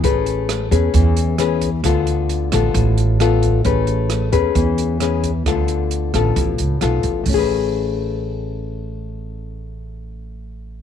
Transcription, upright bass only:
\new Staff \with { instrumentName = "Upright bass" } { \clef bass \time 4/4 \key a \major \tempo 4 = 133 a,,4. e,8 e,2 | d,4. a,,8 a,,2 | a,,4. e,8 e,2 | d,4. a,,8 a,,8 cis,8 b,,8 a,,8 |
a,,1~ | a,,1 | }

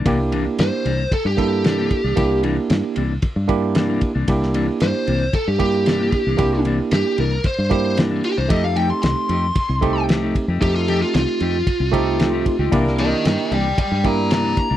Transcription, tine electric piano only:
\new Staff \with { instrumentName = "Tine electric piano" } { \time 4/4 \key c \mixolydian \tempo 4 = 114 <bes d' e' g'>4. r4 <bes d' e' a'>4 r8 | <bes d' e' g'>4. r4 <bes d' e' g'>4 r8 | <bes d' e' g'>4. r4 <bes d' e' g'>4 r8 | <bes d' e' g'>4. r4 <bes d' e' g'>4 r8 |
<a c' ees' g'>4. r4 <a c' ees' g'>4 r8 | <a c' ees' g'>4. r4 <a c' ees' g'>4 r8 | <bes d' e' g'>4. r4 <bes d' e' g'>4 r8 | }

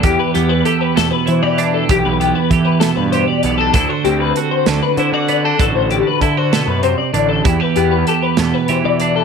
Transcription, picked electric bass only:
\new Staff \with { instrumentName = "Picked electric bass" } { \clef bass \time 6/8 \key c \lydian \tempo 4. = 65 e,16 r16 e,8 r8 e,16 r16 e16 e8. | b,,16 b,,8 r16 e8. g,8 r16 b,,8 | d,16 r16 d,8 r8 d,16 r16 d16 d8. | a,,16 a,,8 r16 d8. fis,8 r16 a,,8 |
e,16 r16 e,8 r8 e,16 r16 e16 e8. | }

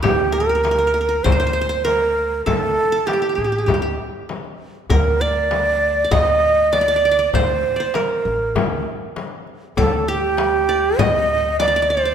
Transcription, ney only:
\new Staff \with { instrumentName = "Ney" } { \time 4/4 \tempo 4 = 99 g'8 bes'4. c''4 bes'4 | a'4 g'4. r4. | bes'8 d''4. ees''4 d''4 | c''4 bes'4. r4. |
a'8 g'4. ees''4 d''8 c''8 | }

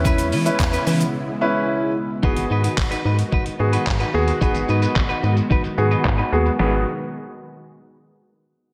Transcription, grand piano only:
\new Staff \with { instrumentName = "Grand piano" } { \time 4/4 \key gis \minor \tempo 4 = 110 <cis' e' b'>8 r16 <cis' e' b'>4 r8. <cis' e' b'>4 r8 | <b fis' gis'>4~ <b fis' gis'>16 r4 r16 <b fis' gis'>8 r8 <b fis' gis'>16 r16 | <b fis' gis'>4~ <b fis' gis'>16 r4 r16 <b fis' gis'>8 r8 <b fis' gis'>16 r16 | <b fis' gis'>8 r2. r8 | }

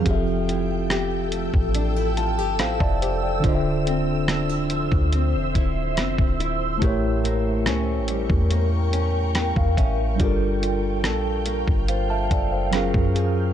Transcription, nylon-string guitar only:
\new Staff \with { instrumentName = "Nylon-string guitar" } { \time 4/4 \key d \minor \tempo 4 = 71 f8 e'8 g'8 a8 d'16 e'16 f'16 g'16 e'8 g'8 | d8 c'8 d'16 e'16 f8 c'8 e'8 c'8 e'8 | a,8 bes8 cis'8 g8 bes8 cis'8 bes8 cis'8 | g8 f'8 a'8 bes8 f'8 a'8 fis8 gis'8 | }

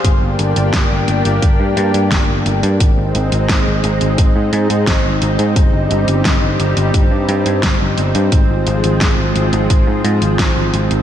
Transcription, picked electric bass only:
\new Staff \with { instrumentName = "Picked electric bass" } { \clef bass \time 4/4 \key g \phrygian \tempo 4 = 87 g,,16 g,,16 g,,16 g,,16 g,,16 g,,16 g,,16 g,,16 g,,16 g,16 g,16 g,16 g,,16 g,,16 g,,16 g,16 | aes,,16 aes,,16 aes,,16 aes,,16 aes,,16 aes,,16 aes,,16 aes,,16 aes,,16 aes,16 aes,16 aes,16 aes,,16 aes,,16 aes,,16 aes,16 | g,,16 g,,16 g,,16 g,,16 g,,16 g,,16 g,,16 g,,16 g,,16 g,16 g,16 g,16 g,,16 g,,16 g,,16 g,16 | aes,,16 aes,,16 aes,,16 aes,,16 aes,,16 aes,,16 aes,,16 aes,,16 aes,,16 aes,16 aes,16 aes,,16 aes,,16 aes,,16 aes,,16 aes,,16 | }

